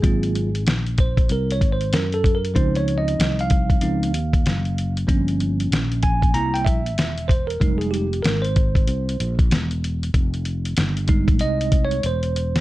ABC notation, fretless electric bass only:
X:1
M:4/4
L:1/8
Q:"Swing 16ths" 1/4=95
K:Fm
V:1 name="Fretless electric bass" clef=bass
A,,,2 B,,,2 C,, A,,, _G,,2 | D,,2 C,,2 D,, E,, _G,,,2 | G,,,2 B,,,2 C,, B,,, =E,,,2 | F,,,2 A,,,2 C,, B,,, =E,,,2 |
F,,,2 G,,,2 C,,2 =E,,,2 |]